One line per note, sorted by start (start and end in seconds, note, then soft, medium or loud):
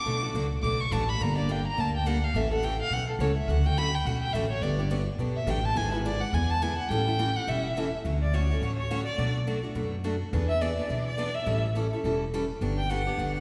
0.00 0.21 D6 medium
0.06 0.29 B1 medium
0.06 0.22 B2 medium
0.06 0.22 F#3 medium
0.06 0.22 A3 medium
0.06 0.22 D4 medium
0.06 0.21 F#4 medium
0.23 0.34 A3 soft
0.23 0.35 D4 medium
0.23 0.34 F#4 medium
0.34 0.58 C#2 medium
0.34 0.45 B2 medium
0.34 0.45 F#3 medium
0.34 0.45 A3 medium
0.34 0.46 D4 medium
0.34 0.46 F#4 medium
0.62 0.87 B1 medium
0.62 0.82 B2 medium
0.62 0.82 F#3 medium
0.62 0.83 A3 medium
0.62 0.83 D4 medium
0.62 0.83 F#4 medium
0.62 0.82 D6 medium
0.81 0.95 C#6 medium
0.91 1.16 A1 medium
0.91 1.02 B2 medium
0.91 1.02 F#3 medium
0.91 1.02 A3 medium
0.91 1.03 D4 loud
0.91 1.03 F#4 loud
0.91 1.11 A5 medium
1.09 1.24 B5 loud
1.20 1.66 G1 medium
1.20 1.36 D3 medium
1.20 1.36 G3 medium
1.20 1.37 A#3 medium
1.20 1.37 D4 medium
1.20 1.35 G4 medium
1.20 1.38 A#5 medium
1.36 1.48 A#3 soft
1.36 1.49 D4 medium
1.36 1.48 G4 medium
1.36 1.53 D5 medium
1.49 1.59 D3 medium
1.49 1.59 G3 medium
1.49 1.59 A#3 medium
1.49 1.60 D4 medium
1.49 1.60 G4 medium
1.49 1.67 G5 medium
1.67 1.81 A#5 loud
1.77 2.23 D2 medium
1.77 1.96 D3 medium
1.77 1.96 G3 medium
1.77 1.97 A#3 medium
1.77 1.97 D4 medium
1.77 1.97 G4 medium
1.77 1.95 A5 medium
1.97 2.08 G5 medium
2.06 2.16 D3 medium
2.06 2.17 G3 medium
2.06 2.17 A#3 medium
2.06 2.17 D4 medium
2.06 2.17 G4 medium
2.06 2.25 F#5 medium
2.24 2.38 F5 medium
2.34 2.80 A1 medium
2.34 2.51 C#3 medium
2.34 2.51 E3 medium
2.34 2.51 A3 medium
2.34 2.51 C#4 medium
2.34 2.50 A4 medium
2.34 2.52 E5 medium
2.51 2.62 A3 soft
2.51 2.62 C#4 medium
2.51 2.62 A4 medium
2.51 2.66 F#5 medium
2.63 2.73 C#3 medium
2.63 2.73 E3 medium
2.63 2.74 A3 medium
2.63 2.74 C#4 medium
2.63 2.74 A4 medium
2.63 2.80 G5 loud
2.82 2.95 F5 loud
2.91 3.15 B1 medium
2.91 3.10 C#3 medium
2.91 3.11 E3 medium
2.91 3.11 A3 medium
2.91 3.11 C#4 medium
2.91 3.11 A4 medium
2.91 3.08 F#5 loud
3.09 3.22 A4 medium
3.19 3.43 C#2 medium
3.19 3.30 C#3 medium
3.19 3.31 E3 medium
3.19 3.31 A3 medium
3.19 3.31 C#4 medium
3.19 3.31 A4 medium
3.19 3.37 C#5 medium
3.37 3.51 E5 medium
3.48 3.94 D2 medium
3.48 3.65 D3 medium
3.48 3.65 F#3 medium
3.48 3.65 A3 medium
3.48 3.65 C#4 medium
3.48 3.65 F#4 medium
3.48 3.67 F#5 medium
3.66 3.77 A3 medium
3.66 3.77 C#4 medium
3.66 3.77 F#4 medium
3.66 3.79 G5 loud
3.77 3.87 D3 medium
3.77 3.88 F#3 medium
3.77 3.88 A3 medium
3.77 3.88 C#4 medium
3.77 3.88 F#4 medium
3.77 3.96 B5 loud
3.95 4.07 G5 loud
4.05 4.29 B1 medium
4.05 4.25 D3 medium
4.05 4.25 F#3 medium
4.05 4.25 A3 medium
4.05 4.25 C#4 medium
4.05 4.25 F#4 medium
4.05 4.21 F#5 medium
4.22 4.35 G5 loud
4.33 4.58 A1 medium
4.33 4.45 D3 medium
4.33 4.45 F#3 medium
4.33 4.45 A3 medium
4.33 4.45 C#4 medium
4.33 4.45 F#4 medium
4.33 4.50 E5 medium
4.50 4.64 C#5 medium
4.61 5.07 G1 medium
4.61 4.78 D3 medium
4.61 4.79 F#3 medium
4.61 4.79 B3 medium
4.61 4.78 D4 medium
4.61 4.78 G4 medium
4.61 4.91 D5 medium
4.79 4.90 B3 soft
4.79 4.90 D4 medium
4.79 4.90 G4 medium
4.90 5.01 D3 medium
4.90 5.01 F#3 medium
4.90 5.01 B3 medium
4.90 5.01 D4 medium
4.90 5.01 G4 medium
5.18 5.43 B1 medium
5.18 5.38 D3 medium
5.18 5.38 F#3 medium
5.18 5.38 B3 medium
5.18 5.38 D4 medium
5.18 5.39 G4 medium
5.36 5.52 E5 medium
5.47 5.71 A1 medium
5.47 5.58 D3 medium
5.47 5.58 F#3 medium
5.47 5.58 B3 loud
5.47 5.58 D4 loud
5.47 5.58 G4 loud
5.47 5.67 G5 medium
5.65 5.78 A5 loud
5.76 6.21 G#1 loud
5.76 5.92 D3 medium
5.76 5.92 G#3 medium
5.76 5.92 B3 medium
5.76 5.92 E4 medium
5.76 5.92 G#4 medium
5.76 5.93 G#5 loud
5.93 6.05 B3 medium
5.93 6.05 E4 medium
5.93 6.04 G#4 medium
5.93 6.08 B4 medium
6.05 6.15 D3 medium
6.05 6.16 G#3 medium
6.05 6.16 B3 medium
6.05 6.16 E4 medium
6.05 6.16 G#4 medium
6.05 6.22 D5 loud
6.21 6.36 F#5 medium
6.33 6.78 E2 medium
6.33 6.52 D3 medium
6.33 6.53 G#3 medium
6.33 6.53 B3 medium
6.33 6.53 E4 medium
6.33 6.53 G#4 medium
6.33 6.52 G#5 medium
6.50 6.64 A5 loud
6.62 6.72 D3 loud
6.62 6.72 G#3 medium
6.62 6.73 B3 loud
6.62 6.73 E4 medium
6.62 6.73 G#4 loud
6.62 6.78 G#5 medium
6.79 6.91 F#5 medium
6.89 7.36 A1 loud
6.89 7.06 E3 medium
6.89 7.07 G3 medium
6.89 7.07 C#4 medium
6.89 7.07 E4 medium
6.89 7.06 A4 medium
6.89 7.38 G5 loud
7.07 7.18 C#4 soft
7.07 7.18 E4 medium
7.07 7.18 A4 medium
7.19 7.29 E3 medium
7.19 7.29 G3 medium
7.19 7.29 C#4 medium
7.19 7.30 E4 medium
7.19 7.30 A4 medium
7.36 7.50 F#5 loud
7.47 7.93 E1 medium
7.47 7.66 E3 medium
7.47 7.66 G3 medium
7.47 7.66 C#4 medium
7.47 7.67 E4 medium
7.47 7.67 A4 medium
7.47 7.93 E5 medium
7.77 7.87 E3 loud
7.77 7.87 G3 medium
7.77 7.87 C#4 loud
7.77 7.87 E4 medium
7.77 7.87 A4 loud
8.05 8.50 D2 medium
8.05 8.23 D3 medium
8.05 8.24 F#3 medium
8.05 8.24 A3 medium
8.05 8.24 C#4 medium
8.05 8.24 F#4 medium
8.22 8.35 D5 medium
8.33 8.44 D3 medium
8.33 8.44 F#3 medium
8.33 8.44 A3 medium
8.33 8.44 C#4 medium
8.33 8.44 F#4 medium
8.33 8.76 C#5 medium
8.50 8.62 A3 soft
8.50 8.62 C#4 medium
8.50 8.61 F#4 medium
8.61 9.07 A1 medium
8.61 8.81 D3 medium
8.61 8.81 F#3 medium
8.61 8.81 A3 medium
8.61 8.81 C#4 medium
8.61 8.81 F#4 medium
8.76 9.04 C#5 medium
8.91 9.01 D3 medium
8.91 9.01 F#3 medium
8.91 9.01 A3 medium
8.91 9.01 C#4 medium
8.91 9.01 F#4 medium
9.05 9.32 D5 medium
9.18 9.64 B1 medium
9.18 9.37 B2 medium
9.18 9.37 F#3 medium
9.18 9.37 A3 medium
9.18 9.38 D4 medium
9.18 9.38 F#4 medium
9.47 9.58 B2 medium
9.47 9.58 F#3 medium
9.47 9.58 A3 medium
9.47 9.58 D4 medium
9.47 9.58 F#4 medium
9.63 9.74 A3 soft
9.63 9.74 D4 medium
9.63 9.75 F#4 medium
9.75 10.21 F#2 medium
9.75 9.94 B2 medium
9.75 9.94 F#3 medium
9.75 9.94 A3 medium
9.75 9.95 D4 medium
9.75 9.95 F#4 medium
10.04 10.15 B2 medium
10.04 10.15 F#3 medium
10.04 10.15 A3 medium
10.04 10.15 D4 medium
10.04 10.15 F#4 medium
10.33 10.79 E2 loud
10.33 10.52 E3 medium
10.33 10.52 B3 medium
10.33 10.52 D4 medium
10.33 10.52 G#4 medium
10.48 10.63 E5 medium
10.61 10.72 E3 medium
10.61 10.72 B3 medium
10.61 10.72 D4 medium
10.61 10.72 G#4 medium
10.61 11.06 D5 medium
10.77 10.89 B3 medium
10.77 10.89 D4 soft
10.77 10.89 G#4 medium
10.89 11.36 B1 medium
10.89 11.09 E3 medium
10.89 11.09 B3 medium
10.89 11.09 D4 medium
10.89 11.09 G#4 medium
11.06 11.36 D5 medium
11.18 11.29 E3 medium
11.18 11.29 B3 medium
11.18 11.29 D4 loud
11.18 11.29 G#4 medium
11.35 11.64 E5 medium
11.46 11.92 A1 medium
11.46 11.66 E3 medium
11.46 11.66 G3 medium
11.46 11.66 C#4 medium
11.46 11.66 E4 medium
11.46 11.66 A4 medium
11.75 11.86 E3 medium
11.75 11.86 G3 medium
11.75 11.86 C#4 medium
11.75 11.86 E4 medium
11.75 11.86 A4 medium
11.93 12.04 C#4 soft
11.93 12.04 E4 soft
11.93 12.04 A4 medium
12.04 12.50 E1 medium
12.04 12.23 E3 medium
12.04 12.23 G3 medium
12.04 12.24 C#4 medium
12.04 12.24 E4 medium
12.04 12.24 A4 medium
12.34 12.44 E3 medium
12.34 12.44 G3 medium
12.34 12.44 C#4 medium
12.34 12.44 E4 medium
12.34 12.44 A4 medium
12.61 13.07 G1 medium
12.61 12.80 D3 medium
12.61 12.80 F#3 medium
12.61 12.80 B3 medium
12.61 12.81 D4 medium
12.61 12.81 G4 medium
12.78 12.91 G5 medium
12.90 13.00 D3 medium
12.90 13.01 F#3 medium
12.90 13.01 B3 medium
12.90 13.01 D4 medium
12.90 13.01 G4 medium
12.90 13.35 F#5 medium
13.07 13.18 B3 medium
13.07 13.18 D4 medium
13.07 13.18 G4 medium
13.18 13.40 G1 medium
13.18 13.37 D3 medium
13.18 13.38 F#3 medium
13.18 13.38 B3 medium
13.18 13.38 D4 medium
13.18 13.38 G4 medium
13.35 13.40 F#5 medium